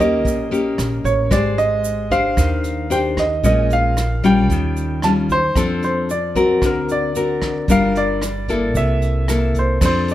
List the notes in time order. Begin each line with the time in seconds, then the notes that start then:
Already playing: D#2 D#3
0.00 A#3 C#4 G4 D#5, shaker
0.25 A#1 A#2, kick, closed hi-hat, shaker
0.51 A#3 C#4 G4, closed hi-hat, shaker
0.78 A#1, cross-stick, closed hi-hat, shaker
1.04 A1 C#5, kick, closed hi-hat, shaker
1.31 G#1 G#3 G4 C5 D5, kick, cross-stick, closed hi-hat, shaker
1.58 D#5, closed hi-hat, shaker
1.84 closed hi-hat, shaker
2.11 D4 G4 C5 F5, kick, closed hi-hat, shaker
2.37 D#2 D#3, kick, cross-stick, closed hi-hat, shaker
2.64 closed hi-hat, shaker
2.90 D4 G4 C5 G5, closed hi-hat, shaker
3.17 D#5, kick, cross-stick, closed hi-hat, shaker
3.43 A#1 A#2 G#3 C#4 F4 D#5, kick, closed hi-hat, shaker
3.70 F5, closed hi-hat, shaker
3.97 cross-stick, closed hi-hat, shaker
4.23 G3 C#4 F4 G5, kick, closed hi-hat, shaker
4.50 D#2 D#3, kick, closed hi-hat, shaker
4.76 closed hi-hat, shaker
5.02 G3 C#4 F4 A5, cross-stick, closed hi-hat, shaker
5.29 C5, kick, closed hi-hat, shaker
5.55 F2 F3 C4 D4 A4, kick, cross-stick, closed hi-hat, shaker
5.82 C5, closed hi-hat, shaker
6.09 D5, closed hi-hat, shaker
6.35 C4 F#4 A#4, kick, closed hi-hat, shaker
6.62 D2 D3 A#4, kick, cross-stick, closed hi-hat, shaker
6.88 D5, closed hi-hat, shaker
7.15 C4 F#4 A#4, closed hi-hat, shaker
7.42 kick, cross-stick, closed hi-hat, shaker
7.68 G1 G3 D4 F4 A#4 F5, kick, closed hi-hat, shaker
7.95 D5, closed hi-hat, shaker
8.22 cross-stick, closed hi-hat, shaker
8.48 A#3 E4 A4, kick, closed hi-hat, shaker
8.75 C2 C3 E5, kick, closed hi-hat, shaker
9.02 closed hi-hat, shaker
9.28 A#3 E4 A4, cross-stick, closed hi-hat, shaker
9.54 kick, closed hi-hat, shaker
9.59 C5
9.81 F2 F3 C4 D4 A4, kick, cross-stick, crash, shaker
9.85 C5
10.08 closed hi-hat, shaker